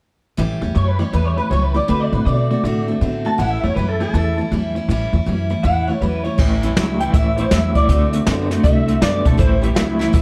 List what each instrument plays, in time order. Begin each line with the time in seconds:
0.37 upright bass A1, steel-string acoustic guitar A2 E3 G3 C#4 G4, clean electric guitar A2 E3
0.61 upright bass E2, clean electric guitar A2 E3, steel-string acoustic guitar G3 C#4 G4
0.75 upright bass F#2, clean electric guitar A2 F#3 C#5, steel-string acoustic guitar E3 G3 C#4 G4
0.88 clean electric guitar B4
0.99 clean electric guitar A2 E3 C#5, steel-string acoustic guitar G3 C#4 G4
1.12 upright bass E2, clean electric guitar A2 E3 B4, steel-string acoustic guitar A2 E3 G3 C#4 G4
1.25 clean electric guitar C#5
1.37 clean electric guitar A2 E3 B4, steel-string acoustic guitar G3 C#4 G4
1.50 upright bass C#2, clean electric guitar A2 F#3 C#5, steel-string acoustic guitar E3 G3 C#4 G4
1.62 clean electric guitar B4
1.74 clean electric guitar A2 E3 D5, steel-string acoustic guitar G3 C#4 G4
1.88 upright bass D2, clean electric guitar D3 A3 B4, steel-string acoustic guitar D3 A3 C4 F#4
2.00 clean electric guitar D5
2.12 upright bass A2, clean electric guitar D3 A3 B4, steel-string acoustic guitar A3 C4 F#4
2.25 upright bass B2, clean electric guitar D3 B3 D5, steel-string acoustic guitar D3 A3 C4 F#4
2.51 clean electric guitar D3 A3, steel-string acoustic guitar A3 C4 F#4
2.64 upright bass A2, clean electric guitar D3 A3, steel-string acoustic guitar D3 A3 C4 F#4
2.88 clean electric guitar D3 A3, steel-string acoustic guitar A3 C4 F#4
3.01 upright bass A2, clean electric guitar D3 B3, steel-string acoustic guitar D3 A3 C4 F#4
3.25 clean electric guitar D3 A3 A5, steel-string acoustic guitar A3 C4 F#4
3.38 upright bass A1, steel-string acoustic guitar A2 E3 G3 C#4 E4, clean electric guitar A2 E3 F#5
3.50 clean electric guitar E5
3.63 upright bass E2, clean electric guitar A2 E3 C#5, steel-string acoustic guitar G3 C#4 E4
3.75 upright bass F#2, clean electric guitar A2 F#3 B4, steel-string acoustic guitar E3 G3 C#4
3.79 steel-string acoustic guitar E4
3.88 clean electric guitar A4
4.00 clean electric guitar A2 E3 A4, steel-string acoustic guitar G3 C#4 E4
4.14 upright bass E2, steel-string acoustic guitar A2 E3 G3 C#4 E4, clean electric guitar A2 E3
4.37 clean electric guitar A2 E3, steel-string acoustic guitar G3 C#4 E4
4.51 upright bass E2, clean electric guitar A2 F#3, steel-string acoustic guitar E3 G3 C#4 E4
4.75 clean electric guitar A2 E3, steel-string acoustic guitar G3 C#4 E4
4.89 upright bass A1, clean electric guitar A2 E3, steel-string acoustic guitar A2 E3 G3 C#4 E4
5.13 upright bass E2, clean electric guitar A2 E3, steel-string acoustic guitar G3 C#4 E4
5.26 upright bass F#2, clean electric guitar A2 F#3, steel-string acoustic guitar E3 G3 C#4 E4
5.50 clean electric guitar A2 E3, steel-string acoustic guitar G3 C#4 E4
5.63 upright bass E2, clean electric guitar A2 E3 F#5, steel-string acoustic guitar A2 E3 G3 C#4 E4
5.87 clean electric guitar A2 E3 C#5, steel-string acoustic guitar G3 C#4 E4
6.01 upright bass E2, clean electric guitar A2 F#3 B4, steel-string acoustic guitar E3 G3 C#4 E4
6.23 clean electric guitar A2 E3 C#5, steel-string acoustic guitar G3 C#4 E4
6.38 upright bass A1, steel-string acoustic guitar A2 E3 G3 C#4 E4, clean electric guitar A2 E3, kick, crash
6.63 clean electric guitar A2 E3, steel-string acoustic guitar G3 C#4 E4, closed hi-hat
6.76 upright bass C#2, clean electric guitar A2 F#3, steel-string acoustic guitar E3 G3 C#4 E4, snare, closed hi-hat
7.00 clean electric guitar A2 E3 G5, steel-string acoustic guitar G3 C#4 E4, closed hi-hat
7.12 upright bass A1, steel-string acoustic guitar A2 E3 G3 C#4 E4, clean electric guitar A2 E3 E5, kick, closed hi-hat
7.36 clean electric guitar A2 E3 C5, steel-string acoustic guitar C#4 E4, closed hi-hat
7.41 steel-string acoustic guitar G3
7.51 upright bass E2, clean electric guitar A2 F#3 E5, steel-string acoustic guitar E3 G3 C#4 E4, snare, closed hi-hat
7.75 clean electric guitar A2 E3 D5, steel-string acoustic guitar G3 C#4 E4, kick, closed hi-hat
7.89 upright bass D2, steel-string acoustic guitar D3 A3 C4 F#4, clean electric guitar D3 A3, kick, closed hi-hat
8.13 clean electric guitar D3 A3, steel-string acoustic guitar A3 C4 F#4, closed hi-hat
8.27 upright bass F#2, clean electric guitar D3 B3, steel-string acoustic guitar D3 A3 C4 F#4, snare, closed hi-hat
8.51 clean electric guitar D3 A3, steel-string acoustic guitar A3 C4 F#4, snare, closed hi-hat
8.63 upright bass C2, steel-string acoustic guitar D3 A3 C4 F#4, clean electric guitar D3 A3 E5, kick, closed hi-hat
8.88 clean electric guitar D3 A3, steel-string acoustic guitar A3 C4 F#4, closed hi-hat
9.01 upright bass F#2, clean electric guitar D3 B3 D5, steel-string acoustic guitar D3 A3 F#4, snare, closed hi-hat
9.25 upright bass B1, clean electric guitar D3 A3 A4, steel-string acoustic guitar A3 C4 F#4, kick, closed hi-hat
9.37 upright bass A1, steel-string acoustic guitar A2 E3 G3 C#4 E4, clean electric guitar A2 E3 C5, kick, closed hi-hat
9.62 clean electric guitar A2 E3 G4, steel-string acoustic guitar G3 C#4 E4, closed hi-hat
9.75 upright bass C#2, clean electric guitar A2 F#3 E4, steel-string acoustic guitar E3 G3 C#4 E4, snare, closed hi-hat
9.99 clean electric guitar A2 E3 E4, steel-string acoustic guitar G3 C#4 E4, snare, closed hi-hat
10.13 upright bass A1, steel-string acoustic guitar A2 E3 G3 C#4 E4, clean electric guitar A2 E3, kick, closed hi-hat